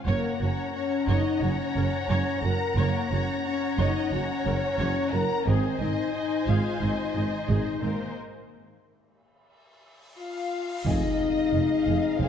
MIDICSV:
0, 0, Header, 1, 12, 480
1, 0, Start_track
1, 0, Tempo, 674157
1, 51, Time_signature, 4, 2, 24, 8
1, 8747, End_track
2, 0, Start_track
2, 0, Title_t, "Flute"
2, 0, Program_c, 0, 73
2, 7257, Note_on_c, 0, 77, 62
2, 7729, Note_on_c, 0, 75, 83
2, 7740, Note_off_c, 0, 77, 0
2, 8682, Note_on_c, 0, 72, 82
2, 8693, Note_off_c, 0, 75, 0
2, 8747, Note_off_c, 0, 72, 0
2, 8747, End_track
3, 0, Start_track
3, 0, Title_t, "Violin section"
3, 0, Program_c, 1, 48
3, 50, Note_on_c, 1, 78, 73
3, 53, Note_on_c, 1, 82, 76
3, 3862, Note_off_c, 1, 78, 0
3, 3892, Note_off_c, 1, 82, 0
3, 3893, Note_on_c, 1, 75, 74
3, 3893, Note_on_c, 1, 80, 74
3, 5783, Note_off_c, 1, 75, 0
3, 5812, Note_off_c, 1, 80, 0
3, 7741, Note_on_c, 1, 68, 68
3, 7742, Note_on_c, 1, 77, 71
3, 7959, Note_off_c, 1, 68, 0
3, 8224, Note_on_c, 1, 65, 55
3, 8281, Note_off_c, 1, 65, 0
3, 8460, Note_on_c, 1, 68, 59
3, 8517, Note_off_c, 1, 68, 0
3, 8702, Note_on_c, 1, 68, 71
3, 8747, Note_off_c, 1, 68, 0
3, 8747, Note_off_c, 1, 77, 0
3, 8747, End_track
4, 0, Start_track
4, 0, Title_t, "Violin section"
4, 0, Program_c, 2, 48
4, 52, Note_on_c, 2, 70, 71
4, 275, Note_off_c, 2, 70, 0
4, 287, Note_on_c, 2, 73, 70
4, 517, Note_off_c, 2, 73, 0
4, 525, Note_on_c, 2, 73, 73
4, 763, Note_off_c, 2, 73, 0
4, 767, Note_on_c, 2, 75, 77
4, 1004, Note_off_c, 2, 75, 0
4, 1007, Note_on_c, 2, 73, 81
4, 1725, Note_on_c, 2, 82, 82
4, 1729, Note_off_c, 2, 73, 0
4, 1963, Note_off_c, 2, 82, 0
4, 1964, Note_on_c, 2, 70, 72
4, 2203, Note_off_c, 2, 70, 0
4, 2211, Note_on_c, 2, 73, 83
4, 2434, Note_off_c, 2, 73, 0
4, 2443, Note_on_c, 2, 73, 85
4, 2682, Note_off_c, 2, 73, 0
4, 2693, Note_on_c, 2, 75, 85
4, 2926, Note_on_c, 2, 73, 88
4, 2932, Note_off_c, 2, 75, 0
4, 3649, Note_off_c, 2, 73, 0
4, 3651, Note_on_c, 2, 82, 91
4, 3891, Note_off_c, 2, 82, 0
4, 3891, Note_on_c, 2, 72, 78
4, 4127, Note_on_c, 2, 75, 83
4, 4131, Note_off_c, 2, 72, 0
4, 4356, Note_off_c, 2, 75, 0
4, 4364, Note_on_c, 2, 75, 72
4, 4603, Note_off_c, 2, 75, 0
4, 4611, Note_on_c, 2, 77, 69
4, 4842, Note_on_c, 2, 75, 71
4, 4851, Note_off_c, 2, 77, 0
4, 5565, Note_on_c, 2, 70, 57
4, 5566, Note_off_c, 2, 75, 0
4, 5803, Note_off_c, 2, 70, 0
4, 7250, Note_on_c, 2, 77, 63
4, 7702, Note_off_c, 2, 77, 0
4, 7726, Note_on_c, 2, 75, 83
4, 8682, Note_on_c, 2, 72, 74
4, 8688, Note_off_c, 2, 75, 0
4, 8747, Note_off_c, 2, 72, 0
4, 8747, End_track
5, 0, Start_track
5, 0, Title_t, "Viola section"
5, 0, Program_c, 3, 48
5, 54, Note_on_c, 3, 73, 62
5, 55, Note_off_c, 3, 73, 0
5, 55, Note_on_c, 3, 73, 79
5, 277, Note_off_c, 3, 73, 0
5, 293, Note_on_c, 3, 66, 51
5, 350, Note_off_c, 3, 66, 0
5, 773, Note_on_c, 3, 73, 76
5, 995, Note_off_c, 3, 73, 0
5, 1013, Note_on_c, 3, 66, 59
5, 1070, Note_off_c, 3, 66, 0
5, 1254, Note_on_c, 3, 70, 62
5, 1311, Note_off_c, 3, 70, 0
5, 1500, Note_on_c, 3, 73, 83
5, 1719, Note_off_c, 3, 73, 0
5, 1735, Note_on_c, 3, 66, 66
5, 1792, Note_off_c, 3, 66, 0
5, 1975, Note_on_c, 3, 73, 77
5, 2196, Note_off_c, 3, 73, 0
5, 2213, Note_on_c, 3, 66, 54
5, 2270, Note_off_c, 3, 66, 0
5, 2695, Note_on_c, 3, 73, 78
5, 2916, Note_off_c, 3, 73, 0
5, 2941, Note_on_c, 3, 66, 64
5, 2998, Note_off_c, 3, 66, 0
5, 3180, Note_on_c, 3, 70, 64
5, 3237, Note_off_c, 3, 70, 0
5, 3416, Note_on_c, 3, 73, 80
5, 3637, Note_off_c, 3, 73, 0
5, 3654, Note_on_c, 3, 66, 59
5, 3711, Note_off_c, 3, 66, 0
5, 3899, Note_on_c, 3, 68, 72
5, 3900, Note_on_c, 3, 72, 68
5, 4119, Note_off_c, 3, 68, 0
5, 4136, Note_on_c, 3, 60, 52
5, 4193, Note_off_c, 3, 60, 0
5, 4616, Note_on_c, 3, 68, 66
5, 4837, Note_off_c, 3, 68, 0
5, 4856, Note_on_c, 3, 60, 57
5, 4913, Note_off_c, 3, 60, 0
5, 5093, Note_on_c, 3, 63, 53
5, 5150, Note_off_c, 3, 63, 0
5, 5323, Note_on_c, 3, 68, 59
5, 5550, Note_off_c, 3, 68, 0
5, 5566, Note_on_c, 3, 60, 48
5, 5623, Note_off_c, 3, 60, 0
5, 5787, Note_off_c, 3, 72, 0
5, 8691, Note_on_c, 3, 68, 68
5, 8747, Note_off_c, 3, 68, 0
5, 8747, End_track
6, 0, Start_track
6, 0, Title_t, "French horn section"
6, 0, Program_c, 4, 60
6, 48, Note_on_c, 4, 58, 85
6, 273, Note_off_c, 4, 58, 0
6, 291, Note_on_c, 4, 61, 90
6, 522, Note_off_c, 4, 61, 0
6, 531, Note_on_c, 4, 61, 98
6, 766, Note_off_c, 4, 61, 0
6, 772, Note_on_c, 4, 63, 92
6, 1012, Note_off_c, 4, 63, 0
6, 1012, Note_on_c, 4, 61, 93
6, 1732, Note_off_c, 4, 61, 0
6, 1732, Note_on_c, 4, 70, 100
6, 1972, Note_off_c, 4, 70, 0
6, 1972, Note_on_c, 4, 58, 89
6, 2207, Note_off_c, 4, 58, 0
6, 2213, Note_on_c, 4, 61, 88
6, 2452, Note_off_c, 4, 61, 0
6, 2461, Note_on_c, 4, 61, 96
6, 2691, Note_off_c, 4, 61, 0
6, 2698, Note_on_c, 4, 63, 89
6, 2934, Note_on_c, 4, 61, 102
6, 2935, Note_off_c, 4, 63, 0
6, 3651, Note_on_c, 4, 70, 98
6, 3652, Note_off_c, 4, 61, 0
6, 3886, Note_off_c, 4, 70, 0
6, 3886, Note_on_c, 4, 60, 91
6, 4126, Note_on_c, 4, 63, 85
6, 4129, Note_off_c, 4, 60, 0
6, 4352, Note_off_c, 4, 63, 0
6, 4361, Note_on_c, 4, 63, 94
6, 4597, Note_on_c, 4, 65, 77
6, 4601, Note_off_c, 4, 63, 0
6, 4831, Note_on_c, 4, 63, 90
6, 4839, Note_off_c, 4, 65, 0
6, 5561, Note_off_c, 4, 63, 0
6, 5562, Note_on_c, 4, 58, 69
6, 5806, Note_off_c, 4, 58, 0
6, 7246, Note_on_c, 4, 65, 74
6, 7700, Note_off_c, 4, 65, 0
6, 7726, Note_on_c, 4, 63, 93
6, 8688, Note_off_c, 4, 63, 0
6, 8690, Note_on_c, 4, 60, 87
6, 8747, Note_off_c, 4, 60, 0
6, 8747, End_track
7, 0, Start_track
7, 0, Title_t, "Trombone section"
7, 0, Program_c, 5, 61
7, 7740, Note_on_c, 5, 48, 59
7, 7742, Note_on_c, 5, 56, 63
7, 8747, Note_off_c, 5, 48, 0
7, 8747, Note_off_c, 5, 56, 0
7, 8747, End_track
8, 0, Start_track
8, 0, Title_t, "Cello section"
8, 0, Program_c, 6, 48
8, 49, Note_on_c, 6, 42, 84
8, 106, Note_off_c, 6, 42, 0
8, 289, Note_on_c, 6, 42, 61
8, 346, Note_off_c, 6, 42, 0
8, 772, Note_on_c, 6, 42, 82
8, 829, Note_off_c, 6, 42, 0
8, 1011, Note_on_c, 6, 42, 58
8, 1068, Note_off_c, 6, 42, 0
8, 1252, Note_on_c, 6, 42, 63
8, 1309, Note_off_c, 6, 42, 0
8, 1494, Note_on_c, 6, 42, 82
8, 1551, Note_off_c, 6, 42, 0
8, 1735, Note_on_c, 6, 42, 58
8, 1792, Note_off_c, 6, 42, 0
8, 1969, Note_on_c, 6, 42, 91
8, 2025, Note_off_c, 6, 42, 0
8, 2211, Note_on_c, 6, 42, 64
8, 2268, Note_off_c, 6, 42, 0
8, 2685, Note_on_c, 6, 42, 85
8, 2742, Note_off_c, 6, 42, 0
8, 2928, Note_on_c, 6, 42, 60
8, 2985, Note_off_c, 6, 42, 0
8, 3168, Note_on_c, 6, 42, 62
8, 3225, Note_off_c, 6, 42, 0
8, 3407, Note_on_c, 6, 42, 80
8, 3464, Note_off_c, 6, 42, 0
8, 3645, Note_on_c, 6, 42, 59
8, 3702, Note_off_c, 6, 42, 0
8, 3889, Note_on_c, 6, 44, 90
8, 3946, Note_off_c, 6, 44, 0
8, 4127, Note_on_c, 6, 44, 56
8, 4184, Note_off_c, 6, 44, 0
8, 4610, Note_on_c, 6, 44, 78
8, 4667, Note_off_c, 6, 44, 0
8, 4850, Note_on_c, 6, 44, 49
8, 4907, Note_off_c, 6, 44, 0
8, 5088, Note_on_c, 6, 44, 54
8, 5145, Note_off_c, 6, 44, 0
8, 5331, Note_on_c, 6, 44, 66
8, 5388, Note_off_c, 6, 44, 0
8, 5574, Note_on_c, 6, 44, 42
8, 5631, Note_off_c, 6, 44, 0
8, 7730, Note_on_c, 6, 41, 80
8, 7787, Note_off_c, 6, 41, 0
8, 8212, Note_on_c, 6, 41, 47
8, 8269, Note_off_c, 6, 41, 0
8, 8452, Note_on_c, 6, 41, 57
8, 8509, Note_off_c, 6, 41, 0
8, 8693, Note_on_c, 6, 41, 73
8, 8747, Note_off_c, 6, 41, 0
8, 8747, End_track
9, 0, Start_track
9, 0, Title_t, "Double bass section"
9, 0, Program_c, 7, 48
9, 49, Note_on_c, 7, 30, 76
9, 106, Note_off_c, 7, 30, 0
9, 287, Note_on_c, 7, 30, 55
9, 344, Note_off_c, 7, 30, 0
9, 770, Note_on_c, 7, 30, 78
9, 827, Note_off_c, 7, 30, 0
9, 1008, Note_on_c, 7, 30, 62
9, 1065, Note_off_c, 7, 30, 0
9, 1250, Note_on_c, 7, 30, 59
9, 1307, Note_off_c, 7, 30, 0
9, 1491, Note_on_c, 7, 30, 83
9, 1548, Note_off_c, 7, 30, 0
9, 1730, Note_on_c, 7, 30, 58
9, 1787, Note_off_c, 7, 30, 0
9, 1972, Note_on_c, 7, 30, 85
9, 2029, Note_off_c, 7, 30, 0
9, 2215, Note_on_c, 7, 30, 64
9, 2272, Note_off_c, 7, 30, 0
9, 2696, Note_on_c, 7, 30, 84
9, 2753, Note_off_c, 7, 30, 0
9, 2938, Note_on_c, 7, 30, 60
9, 2995, Note_off_c, 7, 30, 0
9, 3176, Note_on_c, 7, 30, 58
9, 3233, Note_off_c, 7, 30, 0
9, 3412, Note_on_c, 7, 30, 77
9, 3469, Note_off_c, 7, 30, 0
9, 3657, Note_on_c, 7, 30, 57
9, 3714, Note_off_c, 7, 30, 0
9, 3895, Note_on_c, 7, 32, 76
9, 3952, Note_off_c, 7, 32, 0
9, 4133, Note_on_c, 7, 32, 54
9, 4190, Note_off_c, 7, 32, 0
9, 4611, Note_on_c, 7, 32, 71
9, 4668, Note_off_c, 7, 32, 0
9, 4851, Note_on_c, 7, 32, 54
9, 4908, Note_off_c, 7, 32, 0
9, 5095, Note_on_c, 7, 32, 47
9, 5152, Note_off_c, 7, 32, 0
9, 5332, Note_on_c, 7, 32, 67
9, 5389, Note_off_c, 7, 32, 0
9, 5576, Note_on_c, 7, 32, 45
9, 5633, Note_off_c, 7, 32, 0
9, 7737, Note_on_c, 7, 29, 72
9, 7793, Note_off_c, 7, 29, 0
9, 8217, Note_on_c, 7, 29, 53
9, 8274, Note_off_c, 7, 29, 0
9, 8454, Note_on_c, 7, 29, 55
9, 8510, Note_off_c, 7, 29, 0
9, 8691, Note_on_c, 7, 29, 76
9, 8747, Note_off_c, 7, 29, 0
9, 8747, End_track
10, 0, Start_track
10, 0, Title_t, "Tuba"
10, 0, Program_c, 8, 58
10, 52, Note_on_c, 8, 30, 79
10, 148, Note_off_c, 8, 30, 0
10, 286, Note_on_c, 8, 30, 59
10, 383, Note_off_c, 8, 30, 0
10, 766, Note_on_c, 8, 30, 77
10, 863, Note_off_c, 8, 30, 0
10, 1006, Note_on_c, 8, 30, 58
10, 1103, Note_off_c, 8, 30, 0
10, 1249, Note_on_c, 8, 30, 59
10, 1345, Note_off_c, 8, 30, 0
10, 1483, Note_on_c, 8, 30, 82
10, 1580, Note_off_c, 8, 30, 0
10, 1731, Note_on_c, 8, 30, 58
10, 1827, Note_off_c, 8, 30, 0
10, 1972, Note_on_c, 8, 30, 83
10, 2068, Note_off_c, 8, 30, 0
10, 2213, Note_on_c, 8, 30, 64
10, 2309, Note_off_c, 8, 30, 0
10, 2691, Note_on_c, 8, 30, 84
10, 2787, Note_off_c, 8, 30, 0
10, 2929, Note_on_c, 8, 30, 58
10, 3025, Note_off_c, 8, 30, 0
10, 3171, Note_on_c, 8, 30, 63
10, 3267, Note_off_c, 8, 30, 0
10, 3408, Note_on_c, 8, 30, 80
10, 3505, Note_off_c, 8, 30, 0
10, 3651, Note_on_c, 8, 30, 57
10, 3747, Note_off_c, 8, 30, 0
10, 3888, Note_on_c, 8, 32, 81
10, 3984, Note_off_c, 8, 32, 0
10, 4129, Note_on_c, 8, 32, 56
10, 4226, Note_off_c, 8, 32, 0
10, 4613, Note_on_c, 8, 32, 69
10, 4708, Note_off_c, 8, 32, 0
10, 4848, Note_on_c, 8, 32, 50
10, 4944, Note_off_c, 8, 32, 0
10, 5091, Note_on_c, 8, 32, 53
10, 5187, Note_off_c, 8, 32, 0
10, 5329, Note_on_c, 8, 32, 67
10, 5426, Note_off_c, 8, 32, 0
10, 5577, Note_on_c, 8, 32, 42
10, 5672, Note_off_c, 8, 32, 0
10, 7736, Note_on_c, 8, 29, 79
10, 7831, Note_off_c, 8, 29, 0
10, 8211, Note_on_c, 8, 29, 55
10, 8307, Note_off_c, 8, 29, 0
10, 8455, Note_on_c, 8, 29, 52
10, 8550, Note_off_c, 8, 29, 0
10, 8698, Note_on_c, 8, 29, 75
10, 8747, Note_off_c, 8, 29, 0
10, 8747, End_track
11, 0, Start_track
11, 0, Title_t, "Cymbal swell"
11, 0, Program_c, 10, 119
11, 5812, Note_on_c, 10, 60, 45
11, 7732, Note_off_c, 10, 60, 0
11, 8747, End_track
12, 0, Start_track
12, 0, Title_t, "Impact"
12, 0, Program_c, 11, 103
12, 7735, Note_on_c, 11, 60, 66
12, 8747, Note_off_c, 11, 60, 0
12, 8747, End_track
0, 0, End_of_file